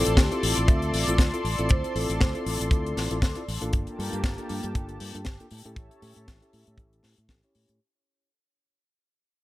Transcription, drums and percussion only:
0.06 closed hi-hat medium
0.17 kick loud
0.17 snare loud
0.17 closed hi-hat medium
0.32 closed hi-hat soft
0.43 open hi-hat loud
0.57 closed hi-hat medium
0.68 kick loud
0.68 closed hi-hat medium
0.82 closed hi-hat soft
0.94 open hi-hat loud
1.08 closed hi-hat medium
1.18 kick loud
1.18 snare loud
1.18 closed hi-hat medium
1.34 closed hi-hat soft
1.45 open hi-hat loud
1.59 closed hi-hat medium
1.69 kick loud
1.69 closed hi-hat medium
1.84 closed hi-hat soft
1.96 open hi-hat medium
2.10 closed hi-hat medium
2.21 kick loud
2.21 snare loud
2.21 closed hi-hat medium
2.35 closed hi-hat soft
2.46 open hi-hat loud
2.61 closed hi-hat medium
2.71 kick loud
2.71 closed hi-hat medium
2.86 closed hi-hat soft
2.97 snare medium
2.97 open hi-hat loud
3.11 closed hi-hat medium
3.22 kick loud
3.22 snare loud
3.22 closed hi-hat medium
3.35 closed hi-hat soft
3.48 open hi-hat loud
3.62 closed hi-hat medium
3.73 kick loud
3.73 closed hi-hat medium
3.87 closed hi-hat soft
4.00 open hi-hat loud
4.13 closed hi-hat medium
4.24 kick loud
4.24 snare loud
4.24 closed hi-hat medium
4.38 closed hi-hat soft
4.49 open hi-hat medium
4.63 closed hi-hat medium
4.75 kick loud
4.75 closed hi-hat medium
4.89 closed hi-hat soft
5.00 open hi-hat loud
5.15 closed hi-hat medium
5.25 kick loud
5.25 snare loud
5.25 closed hi-hat medium
5.40 closed hi-hat soft
5.51 open hi-hat loud
5.65 closed hi-hat medium
5.76 kick loud
5.76 closed hi-hat medium
5.91 closed hi-hat soft
6.02 open hi-hat loud
6.16 closed hi-hat medium
6.28 kick loud
6.28 snare loud
6.28 closed hi-hat medium
6.42 closed hi-hat soft
6.53 open hi-hat loud
6.67 closed hi-hat medium
6.78 kick loud
6.78 closed hi-hat medium
6.93 closed hi-hat soft
7.03 snare medium
7.03 open hi-hat loud
7.18 closed hi-hat medium
7.29 kick medium
7.29 snare loud
7.29 closed hi-hat medium
7.43 closed hi-hat soft
7.55 open hi-hat loud
7.69 closed hi-hat medium

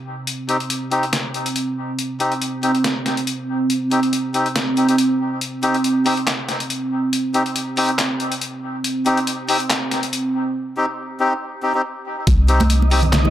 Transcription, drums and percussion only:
0.27 closed hi-hat medium
0.49 closed hi-hat medium
0.60 closed hi-hat soft
0.70 closed hi-hat medium
0.92 closed hi-hat medium
1.03 closed hi-hat soft
1.13 snare loud
1.13 closed hi-hat medium
1.34 closed hi-hat medium
1.46 closed hi-hat medium
1.56 closed hi-hat medium
1.99 closed hi-hat medium
2.20 closed hi-hat medium
2.32 closed hi-hat soft
2.42 closed hi-hat medium
2.63 closed hi-hat soft
2.75 closed hi-hat soft
2.84 snare loud
2.84 closed hi-hat medium
3.06 snare medium
3.06 closed hi-hat medium
3.17 closed hi-hat medium
3.27 closed hi-hat medium
3.70 closed hi-hat medium
3.91 closed hi-hat soft
4.03 closed hi-hat soft
4.13 closed hi-hat medium
4.34 closed hi-hat soft
4.46 closed hi-hat soft
4.56 snare loud
4.56 closed hi-hat medium
4.77 closed hi-hat soft
4.89 closed hi-hat medium
4.98 closed hi-hat medium
5.41 closed hi-hat medium
5.63 closed hi-hat medium
5.74 closed hi-hat soft
5.84 closed hi-hat medium
6.06 open hi-hat medium
6.17 closed hi-hat soft
6.27 snare loud
6.27 clap medium
6.27 closed hi-hat medium
6.49 snare medium
6.49 closed hi-hat medium
6.60 closed hi-hat medium
6.70 closed hi-hat medium
7.13 closed hi-hat medium
7.34 closed hi-hat medium
7.46 closed hi-hat soft
7.56 closed hi-hat medium
7.77 open hi-hat medium
7.89 closed hi-hat soft
7.99 snare loud
7.99 clap medium
7.99 closed hi-hat medium
8.20 closed hi-hat medium
8.32 closed hi-hat medium
8.41 closed hi-hat medium
8.84 closed hi-hat medium
9.06 closed hi-hat medium
9.17 closed hi-hat soft
9.27 closed hi-hat medium
9.49 open hi-hat medium
9.60 closed hi-hat soft
9.70 snare loud
9.70 clap medium
9.70 closed hi-hat medium
9.91 snare medium
9.91 closed hi-hat medium
10.03 closed hi-hat medium
10.13 closed hi-hat medium
12.27 kick loud
12.27 closed hi-hat medium
12.27 muted conga medium
12.48 closed hi-hat medium
12.60 closed hi-hat soft
12.60 muted conga medium
12.60 high conga medium
12.70 closed hi-hat medium
12.82 muted conga medium
12.91 open hi-hat medium
13.03 low conga loud
13.13 snare loud
13.13 clap loud
13.13 closed hi-hat medium
13.13 muted conga medium
13.25 high conga medium
13.25 low conga medium

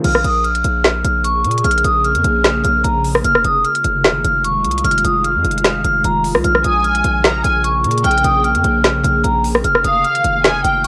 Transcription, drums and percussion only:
0.04 closed hi-hat medium
0.04 crash loud
0.15 cross-stick loud
0.24 closed hi-hat medium
0.45 closed hi-hat soft
0.55 closed hi-hat medium
0.64 closed hi-hat medium
0.84 finger snap loud
0.84 snare loud
0.84 closed hi-hat medium
1.05 closed hi-hat medium
1.24 closed hi-hat medium
1.44 closed hi-hat medium
1.51 closed hi-hat medium
1.58 closed hi-hat medium
1.64 closed hi-hat medium
1.71 closed hi-hat medium
1.78 closed hi-hat medium
1.84 closed hi-hat medium
2.04 closed hi-hat soft
2.15 closed hi-hat medium
2.24 closed hi-hat medium
2.44 finger snap loud
2.44 snare loud
2.44 closed hi-hat medium
2.64 closed hi-hat medium
2.84 closed hi-hat medium
3.04 open hi-hat medium
3.15 cross-stick loud
3.24 closed hi-hat medium
3.35 cross-stick medium
3.44 closed hi-hat medium
3.64 closed hi-hat soft
3.75 closed hi-hat medium
3.84 closed hi-hat medium
4.04 finger snap loud
4.04 snare loud
4.04 closed hi-hat medium
4.24 closed hi-hat medium
4.44 closed hi-hat medium
4.64 closed hi-hat medium
4.71 closed hi-hat medium
4.78 closed hi-hat medium
4.84 closed hi-hat medium
4.91 closed hi-hat medium
4.98 closed hi-hat medium
5.04 closed hi-hat medium
5.24 closed hi-hat medium
5.44 closed hi-hat soft
5.51 closed hi-hat medium
5.58 closed hi-hat medium
5.64 finger snap loud
5.64 snare loud
5.64 closed hi-hat medium
5.84 closed hi-hat medium
6.04 closed hi-hat medium
6.24 open hi-hat medium
6.35 cross-stick loud
6.44 closed hi-hat medium
6.55 cross-stick medium
6.64 closed hi-hat medium
6.84 closed hi-hat soft
6.95 closed hi-hat medium
7.04 closed hi-hat medium
7.24 finger snap loud
7.24 snare loud
7.24 closed hi-hat medium
7.44 closed hi-hat medium
7.64 closed hi-hat medium
7.84 closed hi-hat medium
7.91 closed hi-hat medium
7.98 closed hi-hat medium
8.04 closed hi-hat medium
8.11 closed hi-hat medium
8.18 closed hi-hat medium
8.24 closed hi-hat medium
8.44 closed hi-hat soft
8.55 closed hi-hat medium
8.64 closed hi-hat medium
8.84 finger snap loud
8.84 snare loud
8.84 closed hi-hat medium
9.04 closed hi-hat medium
9.24 closed hi-hat medium
9.44 open hi-hat loud
9.55 cross-stick loud
9.64 closed hi-hat medium
9.75 cross-stick loud
9.84 closed hi-hat medium
10.04 closed hi-hat soft
10.15 closed hi-hat medium
10.24 closed hi-hat medium
10.44 finger snap loud
10.44 snare loud
10.44 closed hi-hat medium
10.64 closed hi-hat medium

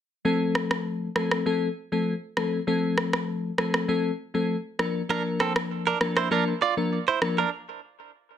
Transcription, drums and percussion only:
0.55 cross-stick medium
0.71 cross-stick medium
1.16 cross-stick medium
1.31 cross-stick medium
2.37 cross-stick medium
2.98 cross-stick medium
3.13 cross-stick loud
3.58 cross-stick medium
3.74 cross-stick medium
4.79 cross-stick medium
5.40 cross-stick medium
5.56 cross-stick loud
6.01 cross-stick medium
6.17 cross-stick medium
7.22 cross-stick medium

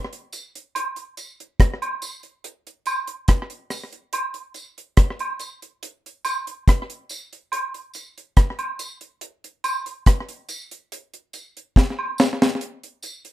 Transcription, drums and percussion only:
0.13 closed hi-hat medium
0.32 closed hi-hat medium
0.32 tambourine medium
0.55 closed hi-hat medium
0.75 closed hi-hat loud
0.75 high woodblock medium
0.96 closed hi-hat medium
1.17 closed hi-hat medium
1.17 tambourine soft
1.40 closed hi-hat medium
1.60 kick loud
1.60 cross-stick loud
1.60 closed hi-hat loud
1.82 closed hi-hat medium
1.82 high woodblock medium
2.02 closed hi-hat medium
2.02 tambourine medium
2.23 closed hi-hat soft
2.44 closed hi-hat medium
2.67 closed hi-hat medium
2.86 closed hi-hat medium
2.86 tambourine medium
2.86 high woodblock medium
3.07 closed hi-hat medium
3.28 kick loud
3.28 cross-stick loud
3.28 closed hi-hat loud
3.50 closed hi-hat medium
3.70 cross-stick medium
3.70 open hi-hat soft
3.70 tambourine medium
3.93 closed hi-hat medium
4.13 closed hi-hat loud
4.13 high woodblock medium
4.34 closed hi-hat medium
4.54 closed hi-hat medium
4.54 tambourine soft
4.78 closed hi-hat medium
4.97 kick loud
4.97 cross-stick loud
4.97 closed hi-hat medium
5.19 closed hi-hat medium
5.19 high woodblock medium
5.39 closed hi-hat medium
5.39 tambourine medium
5.62 closed hi-hat medium
5.83 closed hi-hat loud
6.06 closed hi-hat medium
6.25 closed hi-hat medium
6.25 tambourine medium
6.25 high woodblock medium
6.47 closed hi-hat medium
6.68 kick loud
6.68 cross-stick loud
6.68 closed hi-hat loud
6.90 closed hi-hat medium
7.09 closed hi-hat medium
7.09 tambourine medium
7.33 closed hi-hat medium
7.52 closed hi-hat loud
7.52 high woodblock medium
7.74 closed hi-hat medium
7.94 closed hi-hat medium
7.94 tambourine medium
8.18 closed hi-hat medium
8.37 kick loud
8.37 cross-stick loud
8.37 closed hi-hat loud
8.59 closed hi-hat medium
8.59 high woodblock medium
8.79 closed hi-hat medium
8.79 tambourine medium
9.01 closed hi-hat medium
9.21 closed hi-hat medium
9.44 closed hi-hat medium
9.64 closed hi-hat medium
9.64 tambourine medium
9.64 high woodblock medium
9.86 closed hi-hat medium
10.06 kick loud
10.06 cross-stick loud
10.06 closed hi-hat loud
10.29 closed hi-hat medium
10.49 closed hi-hat medium
10.49 tambourine medium
10.71 closed hi-hat medium
10.92 closed hi-hat loud
11.14 closed hi-hat medium
11.33 closed hi-hat medium
11.33 tambourine soft
11.57 closed hi-hat soft
11.76 kick loud
11.76 snare medium
11.99 high woodblock medium
12.18 snare loud
12.18 tambourine medium
12.42 snare medium
12.61 closed hi-hat medium
12.83 closed hi-hat medium
13.03 closed hi-hat medium
13.03 tambourine medium
13.25 closed hi-hat medium

